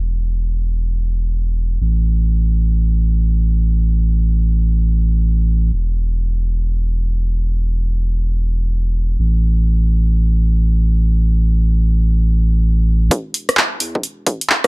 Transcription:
0.00 1.79 E1 medium
1.80 5.71 A1 medium
5.73 9.17 E1 medium
9.19 13.10 A1 medium
13.11 13.46 E1 medium
13.11 kick loud
13.11 closed hi-hat medium
13.34 open hi-hat loud
13.49 13.79 E1 medium
13.49 cross-stick medium
13.49 closed hi-hat medium
13.57 clap loud
13.80 14.02 E2 medium
13.80 open hi-hat loud
13.95 kick medium
14.03 14.25 E1 loud
14.03 closed hi-hat medium
14.26 14.40 E1 medium
14.26 kick loud
14.26 open hi-hat loud
14.41 closed hi-hat medium
14.50 clap loud
14.64 14.67 E1 medium
14.64 kick loud
14.64 cross-stick medium
14.64 closed hi-hat soft

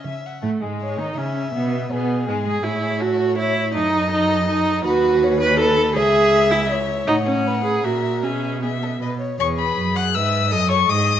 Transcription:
0.00 0.25 C#4 soft
0.04 0.37 C#3 soft
0.04 0.22 E5 soft
0.04 0.28 E5 soft
0.23 0.41 E5 soft
0.23 0.44 F#5 soft
0.42 0.50 A2 medium
0.42 0.49 A3 medium
0.42 0.63 A3 medium
0.61 1.00 G#2 soft
0.61 1.01 G#3 medium
0.61 1.00 G#3 medium
0.82 1.16 C#5 medium
0.98 1.17 D#3 medium
0.98 1.19 D#4 medium
1.17 1.53 C#3 medium
1.17 1.52 C#4 medium
1.17 1.53 C#4 medium
1.17 1.92 E5 medium
1.53 1.91 B2 medium
1.53 1.89 B3 medium
1.53 1.90 B3 medium
1.90 2.30 B2 medium
1.90 2.26 B3 medium
1.90 2.27 B3 medium
1.90 3.03 G#4 medium
2.27 2.48 G#2 medium
2.27 2.47 G#3 medium
2.27 2.35 G#3 medium
2.46 2.64 G#3 medium
2.46 2.65 G#4 medium
2.63 3.77 A2 medium
2.63 3.02 E4 medium
2.63 3.71 C#5 medium
3.00 3.38 F#4 medium
3.00 3.37 A4 medium
3.38 3.74 E4 medium
3.38 3.74 C#5 medium
3.74 4.85 F#2 medium
3.74 4.11 D#4 medium
3.74 4.82 A4 medium
3.74 4.83 D#5 medium
4.11 4.47 D#4 medium
4.48 4.84 D#4 loud
4.84 5.97 D#2 medium
4.84 5.39 F#4 loud
4.84 5.24 B4 medium
4.84 5.97 B4 medium
5.22 5.62 C#5 medium
5.41 5.59 B4 loud
5.59 5.95 A4 loud
5.59 5.98 B4 medium
5.96 7.08 C#2 medium
5.96 6.52 G#4 loud
5.96 7.09 E5 medium
5.96 6.71 E5 medium
6.51 6.70 E4 medium
6.70 7.48 C#5 medium
7.07 7.83 A2 medium
7.07 7.15 D#4 loud
7.07 7.86 F#5 medium
7.27 7.63 C#4 medium
7.47 7.84 B4 medium
7.64 7.85 G#4 medium
7.84 8.25 A#2 medium
7.84 8.24 F#4 medium
7.84 8.26 A#4 medium
7.84 8.22 E5 medium
8.22 9.01 B2 medium
8.22 8.64 C#4 medium
8.22 8.59 G#4 medium
8.22 8.61 E5 medium
8.62 9.20 B3 medium
8.62 8.70 G#4 medium
8.62 9.01 E5 medium
8.83 8.90 A4 medium
9.01 9.20 B2 medium
9.01 9.19 B4 medium
9.01 9.09 D#5 soft
9.20 9.38 C#5 medium
9.38 9.75 E2 medium
9.38 10.16 G#4 medium
9.38 9.46 C#5 medium
9.38 9.47 C#6 medium
9.59 9.95 B4 medium
9.59 9.97 B5 medium
9.78 10.17 F#2 medium
9.96 10.03 F#5 medium
9.96 10.16 F#6 loud
10.15 10.54 G#2 medium
10.15 10.53 B4 medium
10.15 10.50 E5 medium
10.15 10.53 E6 medium
10.51 10.89 F#2 medium
10.51 10.90 A4 medium
10.51 10.69 D#5 medium
10.51 10.70 D#6 loud
10.69 10.77 C#5 medium
10.69 10.91 C#6 loud
10.87 11.20 G#2 medium
10.87 11.20 G#4 medium
10.87 11.20 D#5 medium
10.87 11.20 D#6 loud

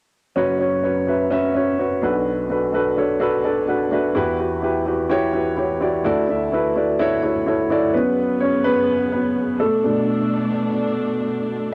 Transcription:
0.36 1.98 F#1 medium
0.36 1.98 F#2 medium
0.36 0.57 C#4 medium
0.36 0.57 F#4 medium
0.36 0.58 B4 medium
0.36 0.58 C#5 medium
0.59 0.81 C#4 medium
0.59 0.81 F#4 soft
0.59 0.81 B4 medium
0.59 0.81 C#5 medium
0.83 1.04 C#4 medium
0.83 1.05 F#4 medium
0.83 1.05 B4 medium
0.83 1.05 C#5 medium
1.07 1.28 C#4 medium
1.07 1.28 F#4 medium
1.07 1.29 B4 medium
1.07 1.29 E5 medium
1.31 1.52 C#4 medium
1.31 1.52 F#4 medium
1.31 1.52 B4 medium
1.31 1.53 E5 medium
1.54 1.76 C#4 medium
1.54 1.76 F#4 medium
1.54 1.76 B4 medium
1.54 1.76 C#5 medium
1.78 1.99 C#4 medium
1.78 2.00 F#4 medium
1.78 2.00 B4 medium
1.78 2.00 C#5 medium
2.02 3.88 B1 medium
2.02 3.88 B2 medium
2.02 2.44 D4 medium
2.02 2.44 F#4 medium
2.02 2.44 A4 medium
2.02 2.45 B4 medium
2.49 2.70 D4 medium
2.49 2.71 F#4 medium
2.49 2.71 A4 medium
2.49 2.71 B4 medium
2.73 2.94 D4 medium
2.73 2.94 F#4 medium
2.73 2.95 A4 medium
2.73 2.95 B4 medium
2.97 3.18 D4 medium
2.97 3.18 F#4 medium
2.97 3.18 A4 medium
2.97 3.19 C#5 medium
3.20 3.41 D4 medium
3.20 3.42 F#4 medium
3.20 3.42 A4 medium
3.20 3.42 B4 medium
3.44 3.65 D4 medium
3.44 3.65 F#4 medium
3.44 3.66 A4 medium
3.44 3.66 D5 medium
3.44 3.67 A5 soft
3.68 3.89 D4 medium
3.68 3.89 F#4 medium
3.68 3.89 A4 medium
3.68 3.90 B4 medium
3.68 3.90 F#5 medium
3.91 4.12 D4 medium
3.91 4.13 F#4 medium
3.91 4.13 A4 medium
3.91 4.13 B4 medium
3.91 4.14 E5 medium
4.15 6.01 E2 medium
4.15 6.01 E3 medium
4.15 4.36 E4 medium
4.15 4.36 F#4 medium
4.15 4.37 G4 medium
4.15 4.37 B4 medium
4.39 4.60 E4 medium
4.39 4.60 F#4 medium
4.39 4.60 G4 medium
4.39 4.61 B4 medium
4.62 4.83 E4 medium
4.62 4.84 F#4 medium
4.62 4.84 G4 medium
4.62 4.84 B4 medium
4.86 5.07 E4 medium
4.86 5.07 F#4 medium
4.86 5.08 G4 medium
4.86 5.08 B4 medium
5.10 5.31 E4 medium
5.10 5.31 F#4 medium
5.10 5.31 G4 medium
5.10 5.32 C#5 medium
5.33 5.54 E4 medium
5.33 5.55 F#4 medium
5.33 5.55 G4 medium
5.33 5.55 B4 medium
5.57 5.78 E4 medium
5.57 5.78 F#4 medium
5.57 5.79 G4 medium
5.57 5.79 C#5 medium
5.81 6.02 E4 medium
5.81 6.02 F#4 medium
5.81 6.02 G4 medium
5.81 6.03 D5 medium
6.04 7.91 D2 medium
6.04 7.91 D3 medium
6.04 6.25 E4 medium
6.04 6.26 F#4 medium
6.04 6.26 A4 medium
6.04 6.26 D5 medium
6.29 6.49 E4 medium
6.29 6.50 F#4 medium
6.29 6.50 A4 medium
6.29 6.50 E5 medium
6.52 6.73 E4 medium
6.52 6.73 F#4 medium
6.52 6.74 A4 medium
6.52 6.74 B4 medium
6.76 6.97 E4 medium
6.76 6.97 F#4 medium
6.76 6.97 A4 medium
6.76 6.98 D5 medium
6.99 7.20 E4 medium
6.99 7.21 F#4 medium
6.99 7.21 A4 medium
6.99 7.21 C#5 medium
7.23 7.44 E4 medium
7.23 7.44 F#4 medium
7.23 7.45 A4 medium
7.23 7.45 C#5 medium
7.46 7.67 E4 medium
7.46 7.68 F#4 medium
7.46 7.68 A4 medium
7.46 7.68 C#5 medium
7.70 7.91 E4 medium
7.70 7.91 F#4 medium
7.70 7.92 A4 medium
7.70 7.92 D5 medium
7.93 9.59 F#2 medium
7.93 9.59 C#3 soft
7.93 8.62 F#3 soft
7.93 9.59 B3 medium
7.93 8.39 B3 medium
7.93 8.41 C#4 soft
7.93 8.38 B4 medium
8.40 8.64 C#4 medium
8.40 8.66 C#5 medium
8.64 9.10 B3 medium
8.64 9.11 B4 medium
9.12 9.58 B3 medium
9.12 9.57 B4 medium
9.60 11.72 B2 medium
9.60 11.72 A3 medium
9.60 9.83 A3 medium
9.60 11.71 D4 medium
9.60 10.51 A4 medium
9.84 10.52 B2 soft
9.84 10.52 A3 soft
9.84 10.52 D4 soft

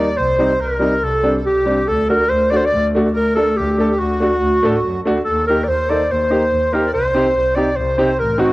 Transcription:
0.00 0.17 D5 medium
0.00 0.19 D5 loud
0.17 0.43 C2 medium
0.17 0.36 C5 medium
0.17 0.62 C5 loud
0.38 0.49 G3 medium
0.38 0.50 C4 medium
0.38 0.50 D#4 medium
0.38 0.60 C5 medium
0.59 0.86 C2 medium
0.59 0.79 A#4 medium
0.59 1.05 A#4 medium
0.79 0.91 G3 medium
0.79 0.92 C4 medium
0.79 0.92 D#4 medium
0.79 1.03 A#4 medium
1.03 1.28 C2 medium
1.03 1.36 A4 medium
1.03 1.34 A4 loud
1.23 1.34 G3 medium
1.23 1.34 C4 medium
1.23 1.34 D4 medium
1.37 1.45 A4 medium
1.45 1.71 C2 medium
1.45 1.84 G4 medium
1.45 1.89 G4 medium
1.66 1.77 G3 medium
1.66 1.77 C4 medium
1.66 1.77 D4 medium
1.86 2.13 D2 medium
1.86 2.07 A4 medium
1.86 2.09 A4 medium
2.07 2.20 A3 medium
2.07 2.20 D4 medium
2.07 2.20 F#4 medium
2.07 2.30 A#4 medium
2.07 2.30 A#4 loud
2.29 2.56 D2 medium
2.29 2.52 C5 medium
2.50 2.62 A3 medium
2.50 2.63 D4 medium
2.50 2.63 F#4 medium
2.50 2.58 D5 loud
2.50 2.64 D5 medium
2.57 2.67 C5 medium
2.65 2.86 D5 medium
2.65 2.88 D5 loud
2.73 2.98 D2 loud
2.95 3.05 A3 medium
2.95 3.05 D4 medium
2.95 3.06 F#4 medium
3.13 3.40 D2 medium
3.13 3.53 A#4 medium
3.13 3.35 A#4 medium
3.35 3.47 A3 medium
3.35 3.47 D4 medium
3.35 3.58 A4 medium
3.35 3.47 A4 medium
3.56 3.83 D2 loud
3.56 3.77 G4 medium
3.56 4.01 G4 medium
3.78 3.89 A3 medium
3.78 3.89 D4 medium
3.78 3.89 G4 medium
3.78 3.90 A4 medium
3.91 3.99 G4 medium
3.98 4.25 D2 medium
3.98 5.00 F#4 medium
3.98 5.05 F#4 medium
4.20 4.31 A3 medium
4.20 4.31 D4 medium
4.20 4.32 F#4 medium
4.42 4.54 D2 loud
4.63 4.82 A2 medium
4.63 4.73 A3 medium
4.63 4.74 D4 medium
4.63 4.74 A4 medium
4.84 5.03 F#2 medium
5.05 5.24 D2 medium
5.05 5.16 A3 medium
5.05 5.16 D4 medium
5.05 5.16 F#4 medium
5.24 5.52 D#2 medium
5.24 5.45 A4 medium
5.24 5.47 A4 medium
5.47 5.59 A#3 medium
5.47 5.59 D#4 medium
5.47 5.59 G4 medium
5.47 5.65 A#4 medium
5.47 5.69 A#4 medium
5.64 5.93 D#2 medium
5.64 5.70 D5 medium
5.68 6.08 C5 medium
5.68 5.91 C5 medium
5.89 5.99 A#3 medium
5.89 6.00 D#4 medium
5.89 6.00 A4 medium
5.89 6.13 D5 medium
6.09 6.35 D#2 medium
6.09 6.89 C5 medium
6.09 6.75 C5 medium
6.30 6.41 A#3 medium
6.30 6.41 D#4 medium
6.30 6.42 G4 medium
6.52 6.77 D#2 medium
6.73 6.83 A#3 medium
6.73 6.84 D#4 medium
6.73 6.84 G4 medium
6.73 6.92 A#4 medium
6.86 6.93 D5 medium
6.93 7.18 C2 medium
6.93 7.57 C5 medium
6.93 7.35 C5 medium
7.15 7.25 C4 medium
7.15 7.25 D#4 medium
7.15 7.26 G4 medium
7.35 7.60 C2 medium
7.35 7.57 C5 medium
7.55 7.67 C4 medium
7.55 7.67 D#4 medium
7.55 7.67 G4 medium
7.55 7.77 D5 medium
7.55 7.78 D5 medium
7.76 8.02 C2 loud
7.76 8.21 C5 medium
7.76 7.96 C5 medium
7.98 8.08 C4 medium
7.98 8.09 D#4 medium
7.98 8.09 G4 medium
7.98 8.17 C5 medium
8.19 8.44 A1 medium
8.19 8.40 A#4 medium
8.38 8.49 C4 medium
8.38 8.49 D#4 medium
8.38 8.53 F#4 medium
8.38 8.50 F#4 medium

